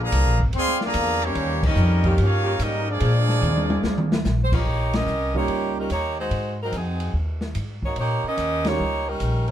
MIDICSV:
0, 0, Header, 1, 9, 480
1, 0, Start_track
1, 0, Tempo, 413508
1, 1564, Time_signature, 4, 2, 24, 8
1, 11042, End_track
2, 0, Start_track
2, 0, Title_t, "Trumpet section"
2, 0, Program_c, 0, 61
2, 45, Note_on_c, 0, 74, 91
2, 45, Note_on_c, 0, 82, 117
2, 51, Note_on_c, 0, 68, 88
2, 52, Note_on_c, 0, 77, 97
2, 485, Note_off_c, 0, 74, 0
2, 485, Note_off_c, 0, 82, 0
2, 488, Note_off_c, 0, 68, 0
2, 488, Note_off_c, 0, 77, 0
2, 664, Note_on_c, 0, 84, 113
2, 669, Note_on_c, 0, 77, 98
2, 674, Note_on_c, 0, 74, 95
2, 678, Note_on_c, 0, 68, 101
2, 934, Note_off_c, 0, 84, 0
2, 937, Note_off_c, 0, 77, 0
2, 939, Note_off_c, 0, 74, 0
2, 941, Note_off_c, 0, 68, 0
2, 994, Note_on_c, 0, 74, 95
2, 998, Note_on_c, 0, 82, 110
2, 999, Note_on_c, 0, 77, 97
2, 1006, Note_on_c, 0, 68, 90
2, 1439, Note_off_c, 0, 74, 0
2, 1440, Note_off_c, 0, 82, 0
2, 1440, Note_on_c, 0, 58, 90
2, 1440, Note_on_c, 0, 63, 96
2, 1441, Note_off_c, 0, 77, 0
2, 1444, Note_off_c, 0, 68, 0
2, 1446, Note_on_c, 0, 67, 97
2, 1450, Note_on_c, 0, 73, 110
2, 1901, Note_off_c, 0, 58, 0
2, 1901, Note_off_c, 0, 63, 0
2, 1904, Note_off_c, 0, 67, 0
2, 1906, Note_off_c, 0, 73, 0
2, 1929, Note_on_c, 0, 75, 96
2, 1933, Note_on_c, 0, 61, 86
2, 1934, Note_on_c, 0, 67, 83
2, 1939, Note_on_c, 0, 70, 90
2, 2502, Note_off_c, 0, 75, 0
2, 2504, Note_off_c, 0, 61, 0
2, 2505, Note_off_c, 0, 67, 0
2, 2508, Note_off_c, 0, 70, 0
2, 2594, Note_on_c, 0, 63, 88
2, 2594, Note_on_c, 0, 73, 83
2, 2595, Note_on_c, 0, 70, 89
2, 2597, Note_on_c, 0, 77, 99
2, 3033, Note_off_c, 0, 70, 0
2, 3037, Note_off_c, 0, 73, 0
2, 3038, Note_off_c, 0, 63, 0
2, 3039, Note_off_c, 0, 77, 0
2, 3047, Note_on_c, 0, 70, 77
2, 3048, Note_on_c, 0, 75, 92
2, 3052, Note_on_c, 0, 61, 78
2, 3057, Note_on_c, 0, 67, 81
2, 3344, Note_off_c, 0, 70, 0
2, 3344, Note_off_c, 0, 75, 0
2, 3346, Note_off_c, 0, 61, 0
2, 3349, Note_off_c, 0, 67, 0
2, 3381, Note_on_c, 0, 65, 88
2, 3381, Note_on_c, 0, 68, 87
2, 3384, Note_on_c, 0, 58, 83
2, 3390, Note_on_c, 0, 74, 104
2, 4950, Note_off_c, 0, 65, 0
2, 4950, Note_off_c, 0, 68, 0
2, 4952, Note_off_c, 0, 58, 0
2, 4955, Note_off_c, 0, 74, 0
2, 11042, End_track
3, 0, Start_track
3, 0, Title_t, "Saxophone section"
3, 0, Program_c, 1, 65
3, 5151, Note_on_c, 1, 72, 81
3, 5250, Note_off_c, 1, 72, 0
3, 5264, Note_on_c, 1, 73, 106
3, 5265, Note_on_c, 1, 67, 97
3, 5266, Note_on_c, 1, 58, 88
3, 5272, Note_on_c, 1, 63, 88
3, 5732, Note_off_c, 1, 73, 0
3, 5733, Note_off_c, 1, 58, 0
3, 5733, Note_off_c, 1, 67, 0
3, 5736, Note_off_c, 1, 63, 0
3, 5749, Note_on_c, 1, 75, 119
3, 5750, Note_on_c, 1, 67, 96
3, 5754, Note_on_c, 1, 70, 100
3, 5755, Note_on_c, 1, 61, 101
3, 6215, Note_off_c, 1, 75, 0
3, 6216, Note_off_c, 1, 67, 0
3, 6217, Note_off_c, 1, 70, 0
3, 6218, Note_off_c, 1, 61, 0
3, 6232, Note_on_c, 1, 67, 88
3, 6234, Note_on_c, 1, 58, 86
3, 6235, Note_on_c, 1, 63, 83
3, 6236, Note_on_c, 1, 73, 94
3, 6664, Note_off_c, 1, 67, 0
3, 6665, Note_off_c, 1, 58, 0
3, 6666, Note_off_c, 1, 63, 0
3, 6667, Note_off_c, 1, 73, 0
3, 6721, Note_on_c, 1, 61, 73
3, 6724, Note_on_c, 1, 63, 68
3, 6724, Note_on_c, 1, 70, 83
3, 6728, Note_on_c, 1, 55, 73
3, 6862, Note_off_c, 1, 61, 0
3, 6863, Note_off_c, 1, 63, 0
3, 6863, Note_off_c, 1, 70, 0
3, 6865, Note_off_c, 1, 55, 0
3, 6867, Note_on_c, 1, 73, 99
3, 6871, Note_on_c, 1, 58, 84
3, 6877, Note_on_c, 1, 63, 86
3, 6877, Note_on_c, 1, 67, 79
3, 7153, Note_off_c, 1, 73, 0
3, 7155, Note_off_c, 1, 58, 0
3, 7158, Note_off_c, 1, 63, 0
3, 7158, Note_off_c, 1, 67, 0
3, 7189, Note_on_c, 1, 63, 79
3, 7195, Note_on_c, 1, 66, 84
3, 7196, Note_on_c, 1, 56, 76
3, 7203, Note_on_c, 1, 72, 84
3, 7623, Note_off_c, 1, 63, 0
3, 7626, Note_off_c, 1, 66, 0
3, 7627, Note_off_c, 1, 56, 0
3, 7631, Note_off_c, 1, 72, 0
3, 7688, Note_on_c, 1, 54, 76
3, 7693, Note_on_c, 1, 70, 89
3, 7696, Note_on_c, 1, 60, 79
3, 7701, Note_on_c, 1, 63, 75
3, 7816, Note_off_c, 1, 54, 0
3, 7819, Note_off_c, 1, 70, 0
3, 7820, Note_off_c, 1, 60, 0
3, 7823, Note_off_c, 1, 63, 0
3, 7850, Note_on_c, 1, 63, 68
3, 7855, Note_on_c, 1, 60, 69
3, 7855, Note_on_c, 1, 66, 70
3, 7856, Note_on_c, 1, 68, 79
3, 8307, Note_off_c, 1, 63, 0
3, 8310, Note_off_c, 1, 60, 0
3, 8310, Note_off_c, 1, 66, 0
3, 8310, Note_off_c, 1, 68, 0
3, 9104, Note_on_c, 1, 58, 71
3, 9109, Note_on_c, 1, 63, 73
3, 9110, Note_on_c, 1, 66, 71
3, 9110, Note_on_c, 1, 73, 79
3, 9244, Note_off_c, 1, 58, 0
3, 9247, Note_off_c, 1, 63, 0
3, 9247, Note_off_c, 1, 66, 0
3, 9247, Note_off_c, 1, 73, 0
3, 9279, Note_on_c, 1, 63, 88
3, 9280, Note_on_c, 1, 67, 91
3, 9281, Note_on_c, 1, 58, 86
3, 9281, Note_on_c, 1, 73, 101
3, 9561, Note_off_c, 1, 63, 0
3, 9561, Note_off_c, 1, 67, 0
3, 9562, Note_off_c, 1, 58, 0
3, 9562, Note_off_c, 1, 73, 0
3, 9599, Note_on_c, 1, 61, 98
3, 9601, Note_on_c, 1, 67, 99
3, 9601, Note_on_c, 1, 70, 104
3, 9609, Note_on_c, 1, 75, 127
3, 10063, Note_off_c, 1, 61, 0
3, 10063, Note_off_c, 1, 67, 0
3, 10063, Note_off_c, 1, 70, 0
3, 10068, Note_off_c, 1, 75, 0
3, 10069, Note_on_c, 1, 58, 92
3, 10070, Note_on_c, 1, 73, 107
3, 10072, Note_on_c, 1, 63, 93
3, 10085, Note_on_c, 1, 67, 87
3, 10533, Note_off_c, 1, 63, 0
3, 10538, Note_off_c, 1, 58, 0
3, 10538, Note_off_c, 1, 73, 0
3, 10546, Note_off_c, 1, 67, 0
3, 10547, Note_on_c, 1, 55, 79
3, 10547, Note_on_c, 1, 63, 77
3, 10548, Note_on_c, 1, 61, 79
3, 10550, Note_on_c, 1, 70, 82
3, 11001, Note_off_c, 1, 63, 0
3, 11017, Note_off_c, 1, 55, 0
3, 11018, Note_off_c, 1, 61, 0
3, 11019, Note_off_c, 1, 70, 0
3, 11042, End_track
4, 0, Start_track
4, 0, Title_t, "Grand piano"
4, 0, Program_c, 2, 0
4, 6196, Note_on_c, 2, 55, 70
4, 6199, Note_on_c, 2, 58, 61
4, 6210, Note_on_c, 2, 61, 61
4, 6212, Note_on_c, 2, 63, 59
4, 6217, Note_on_c, 2, 65, 71
4, 6807, Note_off_c, 2, 55, 0
4, 6809, Note_off_c, 2, 58, 0
4, 6814, Note_off_c, 2, 61, 0
4, 6815, Note_off_c, 2, 63, 0
4, 6818, Note_off_c, 2, 65, 0
4, 10047, Note_on_c, 2, 58, 63
4, 10049, Note_on_c, 2, 55, 64
4, 10056, Note_on_c, 2, 61, 61
4, 10060, Note_on_c, 2, 63, 63
4, 10066, Note_on_c, 2, 65, 73
4, 10191, Note_off_c, 2, 58, 0
4, 10192, Note_off_c, 2, 55, 0
4, 10195, Note_off_c, 2, 61, 0
4, 10197, Note_off_c, 2, 63, 0
4, 10200, Note_off_c, 2, 65, 0
4, 11042, End_track
5, 0, Start_track
5, 0, Title_t, "Saxophone section"
5, 0, Program_c, 3, 65
5, 0, Note_on_c, 3, 53, 87
5, 0, Note_on_c, 3, 58, 85
5, 0, Note_on_c, 3, 62, 84
5, 0, Note_on_c, 3, 68, 112
5, 390, Note_off_c, 3, 68, 0
5, 392, Note_off_c, 3, 58, 0
5, 394, Note_off_c, 3, 62, 0
5, 395, Note_off_c, 3, 53, 0
5, 2371, Note_on_c, 3, 51, 112
5, 2377, Note_on_c, 3, 58, 100
5, 2382, Note_on_c, 3, 67, 126
5, 2385, Note_on_c, 3, 61, 99
5, 2814, Note_off_c, 3, 51, 0
5, 2817, Note_off_c, 3, 58, 0
5, 2820, Note_off_c, 3, 67, 0
5, 2821, Note_off_c, 3, 61, 0
5, 2830, Note_on_c, 3, 51, 103
5, 2837, Note_on_c, 3, 61, 91
5, 2841, Note_on_c, 3, 67, 109
5, 2849, Note_on_c, 3, 58, 95
5, 2943, Note_off_c, 3, 51, 0
5, 2947, Note_off_c, 3, 61, 0
5, 2949, Note_off_c, 3, 67, 0
5, 2954, Note_off_c, 3, 58, 0
5, 3481, Note_on_c, 3, 58, 85
5, 3481, Note_on_c, 3, 62, 81
5, 3483, Note_on_c, 3, 53, 90
5, 3483, Note_on_c, 3, 68, 101
5, 3697, Note_off_c, 3, 58, 0
5, 3697, Note_off_c, 3, 62, 0
5, 3698, Note_off_c, 3, 53, 0
5, 3698, Note_off_c, 3, 68, 0
5, 5252, Note_on_c, 3, 58, 88
5, 5260, Note_on_c, 3, 65, 109
5, 5268, Note_on_c, 3, 51, 94
5, 5268, Note_on_c, 3, 61, 88
5, 5356, Note_off_c, 3, 58, 0
5, 5361, Note_off_c, 3, 65, 0
5, 5366, Note_off_c, 3, 51, 0
5, 5366, Note_off_c, 3, 61, 0
5, 11042, End_track
6, 0, Start_track
6, 0, Title_t, "Trombone section"
6, 0, Program_c, 4, 61
6, 0, Note_on_c, 4, 50, 95
6, 0, Note_on_c, 4, 53, 96
6, 0, Note_on_c, 4, 58, 96
6, 460, Note_off_c, 4, 58, 0
6, 462, Note_off_c, 4, 50, 0
6, 462, Note_off_c, 4, 53, 0
6, 629, Note_on_c, 4, 60, 110
6, 915, Note_off_c, 4, 60, 0
6, 966, Note_on_c, 4, 58, 102
6, 968, Note_on_c, 4, 53, 94
6, 972, Note_on_c, 4, 50, 95
6, 1424, Note_off_c, 4, 58, 0
6, 1426, Note_off_c, 4, 53, 0
6, 1428, Note_off_c, 4, 50, 0
6, 1451, Note_on_c, 4, 58, 85
6, 1451, Note_on_c, 4, 61, 89
6, 1457, Note_on_c, 4, 55, 83
6, 1907, Note_off_c, 4, 58, 0
6, 1907, Note_off_c, 4, 61, 0
6, 1910, Note_off_c, 4, 55, 0
6, 1930, Note_on_c, 4, 58, 83
6, 1930, Note_on_c, 4, 63, 83
6, 1933, Note_on_c, 4, 55, 86
6, 2503, Note_off_c, 4, 58, 0
6, 2503, Note_off_c, 4, 63, 0
6, 2505, Note_off_c, 4, 55, 0
6, 2557, Note_on_c, 4, 61, 99
6, 2559, Note_on_c, 4, 65, 96
6, 2565, Note_on_c, 4, 58, 98
6, 3009, Note_off_c, 4, 58, 0
6, 3019, Note_off_c, 4, 61, 0
6, 3020, Note_off_c, 4, 65, 0
6, 3022, Note_on_c, 4, 63, 84
6, 3023, Note_on_c, 4, 55, 87
6, 3023, Note_on_c, 4, 58, 87
6, 3331, Note_off_c, 4, 63, 0
6, 3332, Note_off_c, 4, 55, 0
6, 3332, Note_off_c, 4, 58, 0
6, 3338, Note_on_c, 4, 56, 88
6, 3339, Note_on_c, 4, 62, 89
6, 3341, Note_on_c, 4, 53, 85
6, 4929, Note_off_c, 4, 56, 0
6, 4929, Note_off_c, 4, 62, 0
6, 4930, Note_off_c, 4, 53, 0
6, 11042, End_track
7, 0, Start_track
7, 0, Title_t, "Upright bass"
7, 0, Program_c, 5, 32
7, 0, Note_on_c, 5, 34, 90
7, 118, Note_off_c, 5, 34, 0
7, 143, Note_on_c, 5, 36, 100
7, 291, Note_off_c, 5, 36, 0
7, 291, Note_on_c, 5, 34, 71
7, 440, Note_off_c, 5, 34, 0
7, 447, Note_on_c, 5, 32, 78
7, 595, Note_off_c, 5, 32, 0
7, 620, Note_on_c, 5, 38, 90
7, 1078, Note_off_c, 5, 38, 0
7, 1093, Note_on_c, 5, 40, 105
7, 1554, Note_off_c, 5, 40, 0
7, 1569, Note_on_c, 5, 39, 99
7, 2032, Note_off_c, 5, 39, 0
7, 2038, Note_on_c, 5, 41, 107
7, 2505, Note_off_c, 5, 41, 0
7, 2530, Note_on_c, 5, 43, 93
7, 2991, Note_off_c, 5, 43, 0
7, 3009, Note_on_c, 5, 44, 98
7, 3470, Note_off_c, 5, 44, 0
7, 3491, Note_on_c, 5, 46, 96
7, 3951, Note_off_c, 5, 46, 0
7, 3965, Note_on_c, 5, 39, 109
7, 4428, Note_off_c, 5, 39, 0
7, 4447, Note_on_c, 5, 38, 85
7, 4909, Note_off_c, 5, 38, 0
7, 4932, Note_on_c, 5, 34, 99
7, 5392, Note_off_c, 5, 34, 0
7, 5408, Note_on_c, 5, 34, 77
7, 5870, Note_off_c, 5, 34, 0
7, 5879, Note_on_c, 5, 36, 90
7, 6346, Note_off_c, 5, 36, 0
7, 6364, Note_on_c, 5, 37, 82
7, 6829, Note_off_c, 5, 37, 0
7, 6848, Note_on_c, 5, 39, 80
7, 7311, Note_off_c, 5, 39, 0
7, 7318, Note_on_c, 5, 44, 84
7, 7787, Note_off_c, 5, 44, 0
7, 7805, Note_on_c, 5, 41, 91
7, 8270, Note_off_c, 5, 41, 0
7, 8279, Note_on_c, 5, 39, 85
7, 8747, Note_off_c, 5, 39, 0
7, 8767, Note_on_c, 5, 44, 81
7, 9232, Note_off_c, 5, 44, 0
7, 9248, Note_on_c, 5, 46, 74
7, 9544, Note_off_c, 5, 46, 0
7, 9721, Note_on_c, 5, 39, 86
7, 10189, Note_off_c, 5, 39, 0
7, 10208, Note_on_c, 5, 37, 83
7, 10673, Note_off_c, 5, 37, 0
7, 10683, Note_on_c, 5, 34, 83
7, 11042, Note_off_c, 5, 34, 0
7, 11042, End_track
8, 0, Start_track
8, 0, Title_t, "Muted upright bass strokes"
8, 9557, Note_on_c, 9, 29, 38
8, 9673, Note_off_c, 9, 29, 0
8, 11042, End_track
9, 0, Start_track
9, 0, Title_t, "Drums"
9, 140, Note_on_c, 9, 36, 28
9, 141, Note_on_c, 9, 44, 60
9, 141, Note_on_c, 9, 51, 93
9, 256, Note_off_c, 9, 36, 0
9, 257, Note_off_c, 9, 44, 0
9, 257, Note_off_c, 9, 51, 0
9, 461, Note_on_c, 9, 36, 63
9, 577, Note_off_c, 9, 36, 0
9, 611, Note_on_c, 9, 51, 78
9, 617, Note_on_c, 9, 36, 31
9, 727, Note_off_c, 9, 51, 0
9, 733, Note_off_c, 9, 36, 0
9, 787, Note_on_c, 9, 38, 30
9, 903, Note_off_c, 9, 38, 0
9, 939, Note_on_c, 9, 38, 53
9, 1056, Note_off_c, 9, 38, 0
9, 1087, Note_on_c, 9, 44, 65
9, 1087, Note_on_c, 9, 51, 90
9, 1095, Note_on_c, 9, 36, 23
9, 1203, Note_off_c, 9, 44, 0
9, 1203, Note_off_c, 9, 51, 0
9, 1211, Note_off_c, 9, 36, 0
9, 1412, Note_on_c, 9, 51, 57
9, 1528, Note_off_c, 9, 51, 0
9, 1569, Note_on_c, 9, 51, 81
9, 1574, Note_on_c, 9, 36, 25
9, 1685, Note_off_c, 9, 51, 0
9, 1690, Note_off_c, 9, 36, 0
9, 1891, Note_on_c, 9, 36, 102
9, 1894, Note_on_c, 9, 49, 90
9, 2007, Note_off_c, 9, 36, 0
9, 2010, Note_off_c, 9, 49, 0
9, 2046, Note_on_c, 9, 44, 62
9, 2163, Note_off_c, 9, 44, 0
9, 2364, Note_on_c, 9, 51, 57
9, 2371, Note_on_c, 9, 36, 67
9, 2480, Note_off_c, 9, 51, 0
9, 2487, Note_off_c, 9, 36, 0
9, 2527, Note_on_c, 9, 51, 80
9, 2643, Note_off_c, 9, 51, 0
9, 3011, Note_on_c, 9, 36, 29
9, 3011, Note_on_c, 9, 44, 67
9, 3011, Note_on_c, 9, 51, 90
9, 3127, Note_off_c, 9, 36, 0
9, 3127, Note_off_c, 9, 44, 0
9, 3127, Note_off_c, 9, 51, 0
9, 3485, Note_on_c, 9, 51, 86
9, 3491, Note_on_c, 9, 36, 24
9, 3601, Note_off_c, 9, 51, 0
9, 3608, Note_off_c, 9, 36, 0
9, 3817, Note_on_c, 9, 38, 45
9, 3933, Note_off_c, 9, 38, 0
9, 3972, Note_on_c, 9, 44, 62
9, 3978, Note_on_c, 9, 47, 62
9, 4088, Note_off_c, 9, 44, 0
9, 4094, Note_off_c, 9, 47, 0
9, 4148, Note_on_c, 9, 48, 68
9, 4264, Note_off_c, 9, 48, 0
9, 4295, Note_on_c, 9, 48, 92
9, 4411, Note_off_c, 9, 48, 0
9, 4453, Note_on_c, 9, 38, 86
9, 4569, Note_off_c, 9, 38, 0
9, 4619, Note_on_c, 9, 47, 84
9, 4735, Note_off_c, 9, 47, 0
9, 4782, Note_on_c, 9, 38, 105
9, 4899, Note_off_c, 9, 38, 0
9, 4930, Note_on_c, 9, 44, 74
9, 4936, Note_on_c, 9, 38, 66
9, 5046, Note_off_c, 9, 44, 0
9, 5052, Note_off_c, 9, 38, 0
9, 5248, Note_on_c, 9, 36, 103
9, 5252, Note_on_c, 9, 49, 95
9, 5364, Note_off_c, 9, 36, 0
9, 5368, Note_off_c, 9, 49, 0
9, 5728, Note_on_c, 9, 51, 73
9, 5733, Note_on_c, 9, 38, 87
9, 5844, Note_off_c, 9, 51, 0
9, 5849, Note_off_c, 9, 38, 0
9, 5889, Note_on_c, 9, 44, 55
9, 6005, Note_off_c, 9, 44, 0
9, 6205, Note_on_c, 9, 36, 54
9, 6321, Note_off_c, 9, 36, 0
9, 6361, Note_on_c, 9, 51, 64
9, 6365, Note_on_c, 9, 36, 22
9, 6477, Note_off_c, 9, 51, 0
9, 6481, Note_off_c, 9, 36, 0
9, 6846, Note_on_c, 9, 36, 22
9, 6846, Note_on_c, 9, 44, 55
9, 6846, Note_on_c, 9, 51, 76
9, 6962, Note_off_c, 9, 36, 0
9, 6962, Note_off_c, 9, 44, 0
9, 6962, Note_off_c, 9, 51, 0
9, 7322, Note_on_c, 9, 36, 24
9, 7325, Note_on_c, 9, 51, 71
9, 7438, Note_off_c, 9, 36, 0
9, 7441, Note_off_c, 9, 51, 0
9, 7803, Note_on_c, 9, 36, 26
9, 7805, Note_on_c, 9, 44, 60
9, 7805, Note_on_c, 9, 51, 74
9, 7919, Note_off_c, 9, 36, 0
9, 7921, Note_off_c, 9, 44, 0
9, 7921, Note_off_c, 9, 51, 0
9, 8124, Note_on_c, 9, 51, 71
9, 8240, Note_off_c, 9, 51, 0
9, 8284, Note_on_c, 9, 36, 30
9, 8400, Note_off_c, 9, 36, 0
9, 8600, Note_on_c, 9, 38, 59
9, 8716, Note_off_c, 9, 38, 0
9, 8761, Note_on_c, 9, 44, 58
9, 8761, Note_on_c, 9, 51, 74
9, 8764, Note_on_c, 9, 36, 25
9, 8877, Note_off_c, 9, 44, 0
9, 8877, Note_off_c, 9, 51, 0
9, 8880, Note_off_c, 9, 36, 0
9, 9084, Note_on_c, 9, 36, 58
9, 9200, Note_off_c, 9, 36, 0
9, 9239, Note_on_c, 9, 51, 64
9, 9244, Note_on_c, 9, 36, 23
9, 9355, Note_off_c, 9, 51, 0
9, 9360, Note_off_c, 9, 36, 0
9, 9721, Note_on_c, 9, 44, 60
9, 9721, Note_on_c, 9, 51, 70
9, 9725, Note_on_c, 9, 36, 23
9, 9837, Note_off_c, 9, 44, 0
9, 9837, Note_off_c, 9, 51, 0
9, 9841, Note_off_c, 9, 36, 0
9, 10035, Note_on_c, 9, 51, 64
9, 10041, Note_on_c, 9, 38, 79
9, 10152, Note_off_c, 9, 51, 0
9, 10157, Note_off_c, 9, 38, 0
9, 10678, Note_on_c, 9, 44, 55
9, 10678, Note_on_c, 9, 51, 77
9, 10685, Note_on_c, 9, 36, 24
9, 10794, Note_off_c, 9, 44, 0
9, 10794, Note_off_c, 9, 51, 0
9, 10801, Note_off_c, 9, 36, 0
9, 11000, Note_on_c, 9, 51, 47
9, 11042, Note_off_c, 9, 51, 0
9, 11042, End_track
0, 0, End_of_file